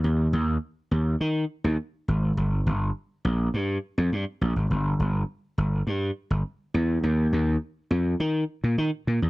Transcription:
\new Staff \with { instrumentName = "Slap bass" } { \clef bass \time 4/4 \key ees \mixolydian \tempo 4 = 103 ees,8 ees,8 r8 ees,8 ees8 r16 ees,16 r8 aes,,8 | g,,8 g,,8 r8 bes,,8 g,8 r16 f,16 g,16 r16 bes,,16 aes,,16 | g,,8 g,,8 r8 g,,8 g,8 r16 g,,16 r8 e,8 | ees,8 ees,8 r8 f,8 ees8 r16 bes,16 ees16 r16 bes,16 e,16 | }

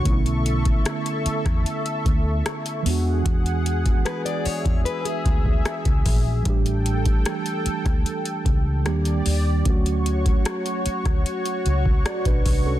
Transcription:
<<
  \new Staff \with { instrumentName = "Analog synth pad" } { \time 4/4 \key e \dorian \tempo 4 = 75 << { <a' cis'''>2.~ <a' cis'''>8 fis''8~ | fis''4. e''2~ e''8 | g''2. d''4 | <cis'' cis'''>1 | } \\ { e''2.~ e''8 gis'8~ | gis'1 | a'2. g'4 | fis'1 | } >> }
  \new Staff \with { instrumentName = "Steel-string acoustic guitar" } { \time 4/4 \key e \dorian r1 | r4 b'16 d''16 cis''8 b'16 gis'4. r16 | r1 | r1 | }
  \new Staff \with { instrumentName = "Tine electric piano" } { \time 4/4 \key e \dorian r1 | r1 | r1 | r2. <fis' d''>16 <d' b'>8 <cis' a'>16 | }
  \new Staff \with { instrumentName = "Tine electric piano" } { \time 4/4 \key e \dorian <d a b cis' e'>2.~ <d a b cis' e'>8 <e gis b d' fis'>8~ | <e gis b d' fis'>2.~ <e gis b d' fis'>8 r8 | <e g a d' g'>2. <dis g ais d' g'>4 | <fis a cis' fis'>1 | }
  \new Staff \with { instrumentName = "Fingered electric bass" } { \clef bass \time 4/4 \key e \dorian b,,4 r8. e,16 r8 d,8 r8 e,8 | e,4 r8. e,16 r8 d,8 r16 cis,16 ais,,8 | a,,4 r8. d,16 r8 cis,8 dis,8 dis,8 | d,4 r8. d,16 r8 cis,8 r16 b,,16 c,8 | }
  \new DrumStaff \with { instrumentName = "Drums" } \drummode { \time 4/4 <hh bd>16 hh16 hh16 <hh bd>16 <hh ss>16 hh16 hh16 <hh bd ss>16 hh16 hh16 <hh bd>8 <hh ss>16 hh16 hho8 | <hh bd>16 hh16 hh16 <hh bd>16 <hh ss>16 hh16 hho16 <hh bd>16 hh16 hh16 <hh bd>16 bd16 <hh ss>16 <hh bd>16 <hho bd>8 | <hh bd>16 hh16 hh16 <hh bd>16 <hh ss>16 hh16 hh16 <hh bd ss>16 hh16 hh16 <hh bd>8 <hh ss>16 hh16 hho8 | <hh bd>16 hh16 hh16 <hh bd>16 <hh ss>16 hh16 hh16 <hh bd ss>16 hh16 hh16 hh16 bd16 <hh ss>16 <hh bd>16 <hho bd>8 | }
>>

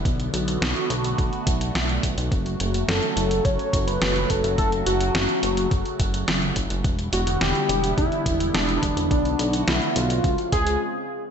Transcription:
<<
  \new Staff \with { instrumentName = "Analog synth lead" } { \time 4/4 \key fis \phrygian \tempo 4 = 106 r1 | r4 a'4 cis''8. b'8. a'8 | a'8 fis'4. r2 | r8 fis'8 g'4 e'4 d'4 |
d'4 e'8 eis'4 gis'8 r4 | }
  \new Staff \with { instrumentName = "Analog synth pad" } { \time 4/4 \key fis \phrygian << { <a fis'>1 | <fis fis'>1~ | <fis fis'>1 | <g e'>1 |
<a fis'>2 <gis eis'>4 r4 | } \\ { <d b>1 | <cis a>1~ | <cis a>1 | <d b>1~ |
<d b>2 <cis bis>4 r4 | } >> }
  \new Staff \with { instrumentName = "Analog synth bass" } { \clef bass \time 4/4 \key fis \phrygian b,,8 b,,8 b,,16 r16 b,,8 b,,16 r16 b,,8 b,,8 b,,16 b,,16 | fis,,8 fis,,8 fis,,16 r16 fis,,8 fis,,16 r16 fis,,8 fis,,8 fis,,16 fis,,16 | fis,,8 fis,,8 fis,,16 r16 fis,,8 fis,,16 r16 fis,,8 fis,,8 fis,,16 fis,,16 | e,,8 e,,8 e,,16 r16 e,,8 e,,16 r16 e,,8 e,,8 e,,16 e,,16 |
b,,8 b,,8 b,,16 r16 b,,8 cis,16 r16 cis,8 r4 | }
  \new DrumStaff \with { instrumentName = "Drums" } \drummode { \time 4/4 <hh bd>16 hh16 hh16 hh16 <hh sn>16 hh16 hh16 hh16 <hh bd>16 hh16 <hh bd>16 hh16 <hh sn>16 hh16 <hh bd>16 hh16 | <hh bd>16 hh16 hh16 hh16 <hh sn>16 hh16 hh16 hh16 <hh bd>16 hh16 <hh bd>16 hh16 <hh sn>16 hh16 <hh bd>16 hh16 | <hh bd>16 hh16 hh16 hh16 <hh sn>16 hh16 hh16 hh16 <hh bd>16 hh16 <hh bd>16 hh16 <hh sn>16 hh16 <hh bd>16 hh16 | <hh bd>16 hh16 hh16 hh16 <hh sn>16 hh16 hh16 hh16 <hh bd>16 hh16 <hh bd>16 hh16 <hh sn>16 hh16 <hh bd>16 hh16 |
<hh bd>16 hh16 hh16 hh16 <hh sn>16 hh16 hh16 hh16 <hh bd>16 hh16 <hh bd>16 hh16 r4 | }
>>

